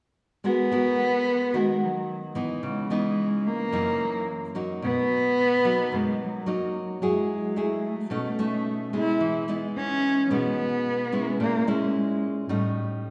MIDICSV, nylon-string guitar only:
0, 0, Header, 1, 2, 480
1, 0, Start_track
1, 0, Key_signature, 5, "minor"
1, 0, Tempo, 547445
1, 396, Time_signature, 4, 2, 24, 8
1, 11489, End_track
2, 0, Start_track
2, 0, Title_t, "Nylon-string guitar"
2, 0, Program_c, 0, 24
2, 386, Note_on_c, 0, 56, 64
2, 390, Note_on_c, 0, 59, 54
2, 394, Note_on_c, 0, 66, 55
2, 398, Note_on_c, 0, 70, 53
2, 595, Note_off_c, 0, 59, 0
2, 595, Note_off_c, 0, 66, 0
2, 595, Note_off_c, 0, 70, 0
2, 628, Note_on_c, 0, 59, 62
2, 634, Note_on_c, 0, 66, 65
2, 637, Note_on_c, 0, 70, 60
2, 1312, Note_off_c, 0, 59, 0
2, 1315, Note_off_c, 0, 66, 0
2, 1316, Note_off_c, 0, 70, 0
2, 1327, Note_off_c, 0, 56, 0
2, 1348, Note_on_c, 0, 51, 63
2, 1350, Note_on_c, 0, 59, 51
2, 1353, Note_on_c, 0, 66, 53
2, 1353, Note_on_c, 0, 70, 57
2, 2033, Note_off_c, 0, 59, 0
2, 2034, Note_off_c, 0, 66, 0
2, 2034, Note_off_c, 0, 70, 0
2, 2062, Note_on_c, 0, 52, 57
2, 2069, Note_on_c, 0, 59, 59
2, 2069, Note_on_c, 0, 63, 56
2, 2286, Note_off_c, 0, 51, 0
2, 2305, Note_on_c, 0, 49, 64
2, 2510, Note_off_c, 0, 52, 0
2, 2511, Note_off_c, 0, 59, 0
2, 2512, Note_off_c, 0, 63, 0
2, 2545, Note_on_c, 0, 52, 56
2, 2551, Note_on_c, 0, 59, 61
2, 2557, Note_on_c, 0, 63, 71
2, 3231, Note_off_c, 0, 52, 0
2, 3232, Note_off_c, 0, 59, 0
2, 3233, Note_off_c, 0, 63, 0
2, 3244, Note_off_c, 0, 49, 0
2, 3265, Note_on_c, 0, 42, 62
2, 3268, Note_on_c, 0, 52, 52
2, 3273, Note_on_c, 0, 58, 55
2, 3274, Note_on_c, 0, 63, 60
2, 3748, Note_off_c, 0, 52, 0
2, 3748, Note_off_c, 0, 58, 0
2, 3750, Note_off_c, 0, 63, 0
2, 3988, Note_on_c, 0, 54, 55
2, 3994, Note_on_c, 0, 58, 56
2, 3998, Note_on_c, 0, 63, 58
2, 4204, Note_off_c, 0, 42, 0
2, 4230, Note_on_c, 0, 47, 67
2, 4431, Note_off_c, 0, 54, 0
2, 4434, Note_off_c, 0, 58, 0
2, 4436, Note_off_c, 0, 63, 0
2, 4951, Note_on_c, 0, 54, 59
2, 4955, Note_on_c, 0, 58, 58
2, 4957, Note_on_c, 0, 63, 65
2, 5166, Note_off_c, 0, 47, 0
2, 5192, Note_on_c, 0, 42, 68
2, 5633, Note_off_c, 0, 54, 0
2, 5634, Note_off_c, 0, 58, 0
2, 5635, Note_off_c, 0, 63, 0
2, 5666, Note_on_c, 0, 54, 56
2, 5673, Note_on_c, 0, 58, 56
2, 5677, Note_on_c, 0, 63, 59
2, 6110, Note_off_c, 0, 54, 0
2, 6114, Note_off_c, 0, 58, 0
2, 6115, Note_off_c, 0, 63, 0
2, 6127, Note_off_c, 0, 42, 0
2, 6155, Note_on_c, 0, 54, 68
2, 6158, Note_on_c, 0, 64, 56
2, 6163, Note_on_c, 0, 68, 58
2, 6595, Note_off_c, 0, 64, 0
2, 6598, Note_off_c, 0, 68, 0
2, 6631, Note_on_c, 0, 57, 51
2, 6636, Note_on_c, 0, 64, 54
2, 6641, Note_on_c, 0, 68, 59
2, 6954, Note_off_c, 0, 57, 0
2, 6956, Note_off_c, 0, 64, 0
2, 6959, Note_off_c, 0, 68, 0
2, 7089, Note_off_c, 0, 54, 0
2, 7102, Note_on_c, 0, 47, 68
2, 7109, Note_on_c, 0, 57, 50
2, 7111, Note_on_c, 0, 61, 54
2, 7115, Note_on_c, 0, 63, 54
2, 7251, Note_off_c, 0, 57, 0
2, 7252, Note_off_c, 0, 61, 0
2, 7254, Note_off_c, 0, 63, 0
2, 7355, Note_on_c, 0, 57, 61
2, 7358, Note_on_c, 0, 61, 61
2, 7364, Note_on_c, 0, 63, 63
2, 7795, Note_off_c, 0, 57, 0
2, 7797, Note_off_c, 0, 61, 0
2, 7799, Note_off_c, 0, 63, 0
2, 7831, Note_on_c, 0, 56, 54
2, 7838, Note_on_c, 0, 59, 53
2, 8043, Note_off_c, 0, 47, 0
2, 8071, Note_on_c, 0, 52, 66
2, 8304, Note_off_c, 0, 56, 0
2, 8305, Note_off_c, 0, 59, 0
2, 8312, Note_on_c, 0, 56, 56
2, 8317, Note_on_c, 0, 59, 64
2, 8322, Note_on_c, 0, 63, 67
2, 8995, Note_off_c, 0, 56, 0
2, 8995, Note_off_c, 0, 59, 0
2, 8996, Note_off_c, 0, 63, 0
2, 9008, Note_off_c, 0, 52, 0
2, 9036, Note_on_c, 0, 47, 65
2, 9036, Note_on_c, 0, 56, 50
2, 9041, Note_on_c, 0, 59, 50
2, 9045, Note_on_c, 0, 63, 58
2, 9716, Note_off_c, 0, 56, 0
2, 9716, Note_off_c, 0, 59, 0
2, 9720, Note_off_c, 0, 63, 0
2, 9753, Note_on_c, 0, 56, 60
2, 9758, Note_on_c, 0, 61, 59
2, 9761, Note_on_c, 0, 64, 57
2, 9971, Note_off_c, 0, 47, 0
2, 9995, Note_on_c, 0, 46, 69
2, 10194, Note_off_c, 0, 56, 0
2, 10197, Note_off_c, 0, 61, 0
2, 10198, Note_off_c, 0, 64, 0
2, 10236, Note_on_c, 0, 56, 55
2, 10241, Note_on_c, 0, 61, 63
2, 10241, Note_on_c, 0, 64, 69
2, 10916, Note_off_c, 0, 56, 0
2, 10918, Note_off_c, 0, 64, 0
2, 10919, Note_off_c, 0, 61, 0
2, 10930, Note_off_c, 0, 46, 0
2, 10954, Note_on_c, 0, 45, 64
2, 10954, Note_on_c, 0, 55, 49
2, 10959, Note_on_c, 0, 61, 51
2, 10963, Note_on_c, 0, 63, 55
2, 11489, Note_off_c, 0, 45, 0
2, 11489, Note_off_c, 0, 55, 0
2, 11489, Note_off_c, 0, 61, 0
2, 11489, Note_off_c, 0, 63, 0
2, 11489, End_track
0, 0, End_of_file